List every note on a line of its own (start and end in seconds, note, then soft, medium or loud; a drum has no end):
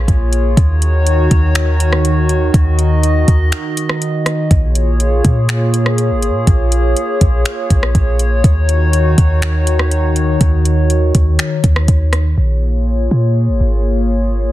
0.00 0.53 A#3 medium
0.00 0.53 F4 medium
0.00 0.53 G#4 medium
0.00 0.53 C#5 medium
0.08 0.55 A#1 loud
0.08 kick loud
0.08 closed hi-hat medium
0.33 closed hi-hat medium
0.57 1.28 D#2 loud
0.57 4.47 D#3 medium
0.57 4.47 D#4 medium
0.57 4.47 F#4 medium
0.57 2.52 C#5 medium
0.57 kick loud
0.57 closed hi-hat medium
0.82 closed hi-hat medium
1.07 closed hi-hat medium
1.31 2.50 D#2 loud
1.31 kick medium
1.31 closed hi-hat medium
1.55 finger snap loud
1.55 closed hi-hat medium
1.80 closed hi-hat medium
1.93 cross-stick loud
2.05 closed hi-hat medium
2.29 closed hi-hat medium
2.54 3.25 D#2 loud
2.54 4.49 D#5 loud
2.54 kick loud
2.54 closed hi-hat medium
2.79 closed hi-hat medium
3.03 closed hi-hat medium
3.28 3.52 D#2 loud
3.28 kick medium
3.28 closed hi-hat medium
3.52 finger snap loud
3.52 closed hi-hat medium
3.77 closed hi-hat medium
3.89 cross-stick loud
4.02 closed hi-hat medium
4.26 cross-stick loud
4.26 closed hi-hat medium
4.51 5.22 A#1 loud
4.51 8.40 A#3 medium
4.51 8.40 F4 medium
4.51 8.40 G#4 medium
4.51 12.34 C#5 loud
4.51 kick loud
4.51 closed hi-hat medium
4.75 closed hi-hat medium
5.00 closed hi-hat medium
5.25 6.12 A#2 loud
5.25 kick medium
5.25 closed hi-hat medium
5.49 finger snap loud
5.49 closed hi-hat medium
5.74 closed hi-hat medium
5.86 cross-stick loud
5.98 closed hi-hat medium
6.11 6.31 G#1 medium
6.22 closed hi-hat medium
6.29 6.47 A#2 loud
6.47 6.95 A#1 loud
6.47 kick loud
6.47 closed hi-hat medium
6.72 closed hi-hat medium
6.96 closed hi-hat medium
7.21 7.45 A#1 loud
7.21 kick medium
7.21 closed hi-hat medium
7.45 finger snap loud
7.45 closed hi-hat medium
7.70 7.94 A#1 loud
7.70 kick loud
7.70 closed hi-hat medium
7.83 cross-stick loud
7.95 8.42 A#1 loud
7.95 kick loud
7.95 closed hi-hat medium
8.19 closed hi-hat medium
8.44 9.15 D#2 loud
8.44 12.34 D#3 medium
8.44 12.34 D#4 medium
8.44 12.34 F#4 medium
8.44 kick loud
8.44 closed hi-hat medium
8.69 closed hi-hat medium
8.93 closed hi-hat medium
9.18 10.37 D#2 loud
9.18 kick medium
9.18 closed hi-hat medium
9.42 finger snap loud
9.42 closed hi-hat medium
9.67 closed hi-hat medium
9.79 cross-stick loud
9.91 closed hi-hat medium
10.16 closed hi-hat medium
10.41 11.12 D#2 loud
10.41 kick loud
10.41 closed hi-hat medium
10.65 closed hi-hat medium
10.90 closed hi-hat medium
11.15 11.38 D#2 loud
11.15 kick medium
11.15 closed hi-hat medium
11.39 finger snap loud
11.39 closed hi-hat medium
11.64 11.87 D#2 loud
11.64 kick loud
11.64 closed hi-hat medium
11.76 cross-stick loud
11.88 12.36 D#2 loud
11.88 kick loud
11.88 closed hi-hat medium
12.13 cross-stick loud
12.13 closed hi-hat medium
12.37 13.08 A#1 loud
12.37 14.52 A#3 medium
12.37 14.52 F4 medium
12.37 14.52 G#4 medium
12.37 14.52 C#5 medium
13.11 13.50 A#2 loud
13.48 13.60 G#1 medium
13.60 14.52 G#1 loud